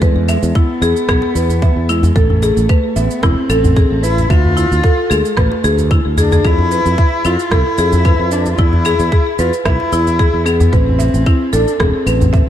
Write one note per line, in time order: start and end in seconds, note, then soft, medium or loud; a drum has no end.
0.02 0.37 E2 loud
0.02 0.57 G#3 loud
0.02 0.15 B4 medium
0.02 kick loud
0.02 cabasa soft
0.15 djembe bass medium
0.28 0.54 E5 medium
0.28 djembe slap medium
0.28 cabasa medium
0.28 claves medium
0.42 0.52 E2 medium
0.42 djembe tone soft
0.42 cabasa soft
0.55 1.91 B3 loud
0.55 0.69 E4 medium
0.55 kick loud
0.55 cabasa soft
0.82 0.92 E2 medium
0.82 1.08 G#4 loud
0.82 cabasa medium
0.96 cabasa soft
1.09 1.19 B1 medium
1.09 1.34 G#4 loud
1.09 kick loud
1.09 cross-stick medium
1.09 cabasa soft
1.09 claves medium
1.22 djembe slap medium
1.35 1.71 E2 loud
1.35 1.49 B4 medium
1.35 djembe tone soft
1.35 cabasa medium
1.49 djembe tone medium
1.49 cabasa soft
1.62 1.88 E5 medium
1.62 kick loud
1.62 cabasa soft
1.76 2.10 E2 medium
1.89 2.16 G#3 medium
1.89 2.03 E4 medium
1.89 cabasa medium
1.89 claves medium
2.03 djembe slap medium
2.03 djembe tone medium
2.03 djembe bass medium
2.03 cabasa soft
2.16 2.51 A1 loud
2.16 2.98 A3 loud
2.16 2.41 A4 loud
2.16 kick loud
2.16 cabasa soft
2.30 djembe bass medium
2.42 2.68 G#4 loud
2.42 djembe slap medium
2.42 cabasa medium
2.57 2.66 A1 medium
2.57 cabasa soft
2.69 2.83 B4 medium
2.69 kick loud
2.69 cabasa soft
2.69 claves medium
2.96 3.07 A1 medium
2.96 3.23 B3 medium
2.96 3.22 E5 medium
2.96 djembe tone soft
2.96 cabasa medium
3.11 cabasa soft
3.22 3.34 E1 medium
3.22 4.05 C4 loud
3.22 3.37 E4 medium
3.22 kick loud
3.22 cross-stick medium
3.22 djembe tone medium
3.22 cabasa soft
3.49 3.85 A1 medium
3.49 3.75 A4 loud
3.49 djembe tone soft
3.49 cabasa medium
3.49 claves medium
3.64 djembe bass loud
3.64 cabasa soft
3.76 4.02 G#4 loud
3.76 kick loud
3.76 cabasa soft
3.91 4.25 A1 medium
4.03 4.31 E4 loud
4.03 4.17 B4 medium
4.03 cabasa medium
4.18 djembe slap medium
4.18 djembe tone medium
4.18 cabasa soft
4.30 4.65 D2 loud
4.30 5.12 F4 loud
4.30 4.56 E5 medium
4.30 kick loud
4.30 cabasa soft
4.30 claves medium
4.45 djembe bass medium
4.57 4.70 E4 medium
4.57 djembe slap medium
4.57 cabasa medium
4.71 4.81 D2 medium
4.71 djembe tone soft
4.71 cabasa soft
4.83 5.09 A4 loud
4.83 kick loud
4.83 cabasa soft
5.10 5.21 D2 medium
5.10 5.37 G#3 loud
5.10 5.36 G#4 loud
5.10 cabasa medium
5.10 claves medium
5.25 cabasa soft
5.37 5.48 A1 loud
5.37 5.87 A3 medium
5.37 5.51 B4 medium
5.37 kick loud
5.37 cross-stick medium
5.37 cabasa soft
5.52 djembe slap medium
5.64 5.99 D2 loud
5.64 5.78 G#4 loud
5.64 cabasa medium
5.78 djembe tone medium
5.78 cabasa soft
5.91 6.04 E4 medium
5.91 kick loud
5.91 cabasa soft
5.91 claves medium
6.06 6.40 D2 medium
6.17 6.47 D4 loud
6.17 6.26 G#4 loud
6.17 djembe bass medium
6.17 cabasa medium
6.31 6.43 G#4 loud
6.31 djembe slap medium
6.31 djembe tone medium
6.31 djembe bass medium
6.31 cabasa soft
6.44 6.80 F2 medium
6.44 7.27 E4 loud
6.44 6.70 G#4 loud
6.44 kick loud
6.44 cabasa soft
6.44 claves medium
6.58 djembe bass loud
6.71 6.85 B4 medium
6.71 djembe slap medium
6.71 cabasa medium
6.86 6.95 F2 medium
6.86 cabasa soft
6.98 7.24 E5 medium
6.98 kick loud
6.98 cabasa soft
7.25 7.35 F2 medium
7.25 7.39 E4 medium
7.25 7.54 F4 loud
7.25 djembe tone soft
7.25 cabasa medium
7.25 claves medium
7.39 cabasa soft
7.51 7.62 C2 medium
7.51 8.33 E4 loud
7.51 7.77 A4 medium
7.51 kick loud
7.51 cross-stick medium
7.51 djembe tone medium
7.51 cabasa soft
7.78 8.14 F2 loud
7.78 8.04 G#4 loud
7.78 djembe tone soft
7.78 cabasa medium
7.92 djembe bass loud
7.92 cabasa soft
8.05 8.19 B4 medium
8.05 kick loud
8.05 cabasa soft
8.05 claves medium
8.19 8.54 F2 medium
8.31 8.51 D4 loud
8.31 8.57 E5 medium
8.31 cabasa medium
8.46 djembe slap soft
8.46 djembe tone medium
8.46 cabasa soft
8.52 8.61 F4 medium
8.58 8.94 E2 loud
8.58 8.72 E4 medium
8.58 9.38 E4 loud
8.58 kick loud
8.58 cabasa soft
8.73 djembe bass medium
8.85 9.11 G#4 loud
8.85 djembe slap medium
8.85 cabasa medium
8.85 claves medium
9.00 9.09 E2 medium
9.00 djembe tone soft
9.00 cabasa soft
9.12 9.38 G#4 loud
9.12 kick loud
9.12 cabasa soft
9.39 9.50 E2 medium
9.39 9.51 F4 loud
9.39 9.52 B4 medium
9.39 cabasa medium
9.53 cabasa soft
9.65 9.76 B1 medium
9.65 10.48 E4 loud
9.65 9.91 E5 medium
9.65 kick medium
9.65 cross-stick medium
9.65 cabasa soft
9.65 claves medium
9.80 djembe slap medium
9.92 10.28 E2 medium
9.92 10.06 E4 medium
9.92 djembe tone soft
9.92 cabasa medium
10.07 djembe tone medium
10.07 cabasa soft
10.19 10.45 G#4 loud
10.19 kick loud
10.19 cabasa soft
10.34 10.68 E2 medium
10.46 10.75 B3 medium
10.46 10.71 G#4 loud
10.46 cabasa medium
10.46 claves medium
10.60 djembe slap medium
10.60 djembe tone medium
10.60 djembe bass medium
10.60 cabasa soft
10.73 11.08 A1 loud
10.73 11.56 C4 loud
10.73 10.86 B4 medium
10.73 kick medium
10.73 cabasa soft
10.88 djembe bass medium
10.99 11.25 E5 medium
10.99 djembe slap medium
10.99 cabasa medium
11.14 11.23 A1 medium
11.14 cabasa soft
11.26 11.40 E4 medium
11.26 kick loud
11.26 cabasa soft
11.26 claves medium
11.53 11.64 A1 medium
11.53 11.80 D4 medium
11.53 11.79 A4 loud
11.53 djembe tone soft
11.53 cabasa medium
11.68 cabasa soft
11.80 11.91 E1 loud
11.80 12.49 C4 medium
11.80 12.05 G#4 loud
11.80 kick medium
11.80 cross-stick medium
11.80 djembe tone medium
11.80 cabasa soft
12.06 12.42 A1 loud
12.06 12.20 B4 medium
12.06 djembe tone soft
12.06 cabasa medium
12.06 claves medium
12.21 djembe bass medium
12.21 cabasa soft
12.33 12.49 E5 medium
12.33 kick loud
12.33 cabasa soft